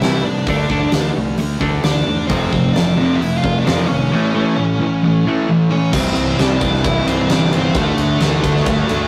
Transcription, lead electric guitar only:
0.00 0.23 E4 medium
0.00 0.22 E5 loud
0.25 1.13 D4 medium
0.25 1.12 D5 medium
1.84 2.28 D4 medium
1.84 2.27 D5 medium
2.27 2.72 C4 medium
2.27 2.73 C5 medium
2.73 3.19 D4 medium
2.73 3.21 D5 medium
3.16 3.37 E5 loud
3.21 3.42 E4 medium
3.37 3.59 F5 loud
3.43 3.64 F4 medium
3.60 3.87 D5 medium
3.64 3.87 D4 medium
3.84 5.44 C#4 medium
3.84 5.42 C#5 medium
5.71 5.92 C#4 medium
5.71 5.94 C#5 medium
5.94 6.36 C4 medium
5.94 6.41 C5 loud
6.39 6.82 D4 medium
6.39 6.84 D5 medium
6.84 7.06 E4 medium
6.84 7.08 E5 loud
7.07 7.29 C4 medium
7.07 7.32 C5 medium
7.30 7.52 D4 medium
7.30 7.54 D5 loud
7.55 7.76 C4 medium
7.55 7.76 C5 medium
7.79 8.20 A3 medium
7.79 8.22 A4 medium
8.22 9.08 A3 medium
8.22 9.08 A4 medium

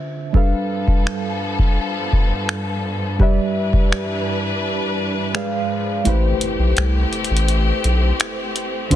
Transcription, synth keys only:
0.00 0.30 D3 medium
0.00 0.30 D4 medium
0.00 0.34 F4 medium
0.00 0.31 C5 medium
0.00 0.32 E5 medium
0.33 3.15 G3 medium
0.33 3.16 D4 medium
0.33 3.16 A4 medium
0.33 3.17 B4 medium
0.37 3.17 F5 medium
3.19 5.30 G3 medium
3.19 5.30 G4 medium
3.19 5.31 B4 medium
3.19 5.31 D5 medium
3.19 5.32 E5 medium
5.34 6.06 G#3 medium
5.34 6.06 G#4 medium
5.34 6.06 B4 medium
5.34 6.06 D5 medium
5.34 6.07 F5 medium
6.04 8.87 A3 medium
6.04 8.87 E4 medium
6.04 8.88 G4 medium
6.04 8.88 B4 medium
6.04 8.89 C5 medium
8.90 8.96 D3 medium
8.90 8.96 D4 medium
8.90 8.96 F4 medium

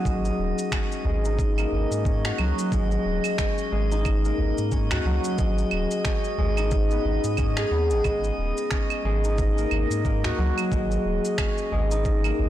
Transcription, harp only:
0.00 0.10 F#3 loud
0.00 1.58 A#3 medium
0.00 0.72 C#4 medium
0.00 1.25 D#4 medium
0.00 2.01 F#4 medium
0.05 1.04 G#3 medium
0.72 2.05 C#4 medium
1.05 2.72 G#3 loud
1.25 3.91 D#4 medium
1.59 4.25 A#3 medium
2.05 3.39 C#4 medium
2.25 4.68 F#4 loud
2.39 2.77 F#3 loud
2.73 3.71 G#3 medium
3.39 4.72 C#4 medium
3.72 5.38 G#3 medium
3.92 6.57 D#4 medium
4.25 6.97 A#3 medium
4.72 6.05 C#4 medium
4.91 7.35 F#4 medium
5.06 5.44 F#3 loud
5.39 6.37 G#3 medium
6.05 7.38 C#4 medium
6.38 7.90 G#3 loud
6.57 9.24 D#4 medium
6.91 7.72 B3 medium
7.38 8.71 C#4 medium
7.58 9.85 G#4 medium
7.72 9.64 B3 medium
7.91 8.04 G#3 medium
8.05 9.04 G#3 medium
8.72 11.38 C#4 medium
9.05 10.71 G#3 loud
9.25 11.91 D#4 medium
9.58 10.04 A#3 medium
10.05 12.24 A#3 medium
10.25 12.49 F#4 medium
10.38 10.77 F#3 loud
10.72 11.71 G#3 medium
11.39 12.49 C#4 medium
11.72 12.49 G#3 medium
11.91 12.49 D#4 medium
12.25 12.49 A#3 medium

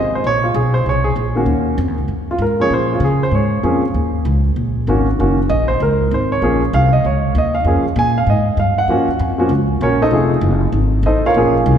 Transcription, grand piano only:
0.00 0.13 D#5 medium
0.15 0.25 C5 medium
0.27 0.44 C#5 loud
0.44 0.55 F4 medium
0.55 0.74 G#4 medium
0.74 0.85 C5 medium
0.89 1.06 C#5 medium
1.04 1.11 G#4 medium
1.35 1.76 D#3 medium
1.35 1.76 A#3 medium
1.35 1.76 C#4 medium
1.35 1.76 F#4 medium
2.31 2.41 F4 medium
2.42 2.60 A#4 medium
2.60 3.00 F3 medium
2.60 3.00 A#3 medium
2.60 3.00 C#4 medium
2.60 3.01 G#4 medium
2.60 2.72 C#5 loud
2.74 2.91 C5 medium
2.93 3.03 F4 medium
3.04 3.22 G#4 medium
3.23 3.33 C5 medium
3.35 4.23 C#5 medium
3.63 3.81 F3 medium
3.63 3.81 A#3 medium
3.63 3.81 C#4 medium
3.63 3.82 G#4 medium
4.88 5.05 D#3 medium
4.88 5.05 A#3 medium
4.88 5.06 C#4 medium
4.88 5.06 F#4 medium
5.19 5.36 D#3 medium
5.19 5.37 A#3 medium
5.19 5.37 C#4 medium
5.19 5.37 F#4 medium
5.50 5.68 D#5 medium
5.68 5.79 C5 medium
5.82 6.10 A#4 medium
6.14 6.32 C5 medium
6.32 6.60 C#5 medium
6.42 6.60 F3 medium
6.42 6.60 A#3 medium
6.42 6.60 C#4 medium
6.42 6.60 G#4 medium
6.74 6.93 F5 loud
6.93 7.04 D#5 medium
7.06 7.34 C#5 medium
7.38 7.55 D#5 medium
7.55 7.83 F5 medium
7.66 7.83 F3 medium
7.66 7.84 A#3 medium
7.66 7.84 C#4 medium
7.66 7.84 G#4 medium
7.99 8.17 G#5 medium
8.18 8.28 F5 medium
8.30 8.57 D#5 medium
8.60 8.78 F5 medium
8.78 9.07 F#5 medium
8.89 9.07 F3 medium
8.89 9.07 A#3 medium
8.89 9.08 C#4 medium
8.89 9.07 F#4 medium
9.38 9.49 F3 medium
9.38 9.50 A#3 medium
9.38 9.50 C#4 medium
9.38 9.50 F#4 medium
9.82 10.01 C#4 medium
9.82 10.01 F#4 medium
9.82 10.01 A#4 medium
9.82 10.01 C#5 medium
10.02 10.11 D#4 medium
10.02 10.30 A4 medium
10.02 10.30 C5 medium
10.02 10.30 D#5 medium
10.12 10.98 F3 medium
10.12 10.98 A3 medium
10.12 10.98 D#4 medium
10.12 10.99 G#4 medium
11.06 11.25 D#4 medium
11.06 11.25 A4 medium
11.06 11.24 C5 medium
11.06 11.24 D#5 medium
11.26 11.54 F4 medium
11.26 11.54 A#4 medium
11.26 11.54 C#5 medium
11.26 11.54 F5 loud
11.36 11.78 F3 medium
11.36 11.78 A#3 medium
11.36 11.78 C#4 medium
11.36 11.78 G#4 medium

